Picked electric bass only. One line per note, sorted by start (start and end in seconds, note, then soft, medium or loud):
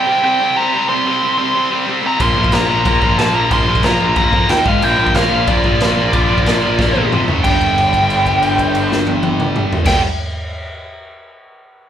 2.20 2.32 A#1 loud
2.35 2.48 A#1 loud
2.51 2.64 A#1 loud
2.68 2.80 A#1 loud
2.86 2.98 A#1 medium
3.02 3.14 A#1 loud
3.17 3.29 A#1 loud
3.33 3.46 A#1 medium
3.51 3.63 A#1 loud
3.66 3.79 A#1 loud
3.83 3.95 A#1 loud
3.99 4.11 A#1 loud
4.16 4.28 A#1 medium
4.33 4.49 F2 medium
4.49 4.61 D#2 loud
4.65 4.77 G#1 medium
4.82 4.94 A#1 loud
4.98 5.10 A#1 loud
5.14 5.26 A#1 medium
5.31 5.43 A#1 loud
5.48 5.59 A#1 loud
5.64 5.76 A#1 medium
5.81 5.93 A#1 medium
5.97 6.09 A#1 loud
6.14 6.25 A#1 loud
6.31 6.42 A#1 loud
6.46 6.58 A#1 loud
6.63 6.75 A#1 medium
6.79 6.90 A#1 medium
6.95 7.07 A#1 medium
7.11 7.23 F1 loud
7.28 7.39 F#1 medium
7.45 9.78 G1 loud
9.86 9.99 G1 loud